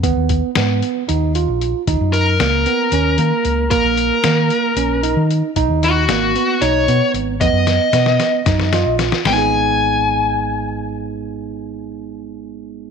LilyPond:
<<
  \new Staff \with { instrumentName = "Lead electric guitar" } { \time 7/8 \key gis \dorian \tempo 4 = 114 r2. r8 | r8 ais'2. | ais'2. r8 | r8 fis'4. cis''4 r8 |
dis''2. r8 | gis''2.~ gis''8~ | gis''2.~ gis''8 | }
  \new Staff \with { instrumentName = "Tine electric piano" } { \time 7/8 \key gis \dorian b4 b4 dis'8 eis'4 | dis'4 ais8 b8 cis'8 ais4 | ais4 ais4 cis'8 dis'4 | dis'4 ais8 b8 dis'8 b4 |
b4 b4 dis'8 eis'4 | <gis b dis' gis'>2.~ <gis b dis' gis'>8~ | <gis b dis' gis'>2.~ <gis b dis' gis'>8 | }
  \new Staff \with { instrumentName = "Fingered electric bass" } { \clef bass \time 7/8 \key gis \dorian dis,16 dis,8 r16 gis,8 r8 dis,8. ais,,8 r16 | dis,16 fis,8. cis,8 r8 dis,8 dis16 r16 cis,8 | ais,,16 ais,,8 r16 dis8 r8 ais,,8. dis8 r16 | b,,16 dis,8. gis,,8 r8 b,,8 b,16 r16 gis,,8 |
fis,16 fis,8 r16 b,8 r8 fis,8. ais,,8 r16 | gis,,2.~ gis,,8~ | gis,,2.~ gis,,8 | }
  \new DrumStaff \with { instrumentName = "Drums" } \drummode { \time 7/8 <hh bd>8 <hh bd>8 <hh sn>8 hh8 hh8 hh8 hh8 | <hh bd>8 hh8 <hh sn>8 hh8 hh8 hh8 hh8 | <hh bd>8 hh8 <hh sn>8 hh8 hh8 hh8 hh8 | <hh bd>8 <hh sn>8 <hh sn>8 hh8 hh8 hh8 hh8 |
<hh bd>8 <hh sn>8 <hh sn>16 sn16 <hh sn>8 <hh bd sn>16 sn16 <hh sn>8 <hh sn>16 sn16 | <hho sn>4 r4 r4. | r4 r4 r4. | }
>>